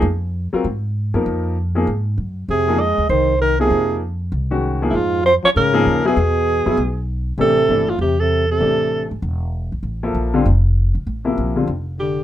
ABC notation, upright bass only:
X:1
M:4/4
L:1/8
Q:"Swing" 1/4=196
K:Fphr
V:1 name="Upright bass" clef=bass
F,,3 z A,,3 G,, | F,,4 A,,2 G,,2 | F,,3 E,, C,,4 | F,,4 C,,4 |
F,,3 z A,,2 E,,2 | =E,,3 F,, =B,,,4 | [K:Aphr] A,,,2 G,,,2 E,,4 | A,,,3 ^G,,, E,,,3 B,,, |
A,,,2 B,,,2 F,,,3 B,,, | A,,,2 B,,,2 F,,,4 |]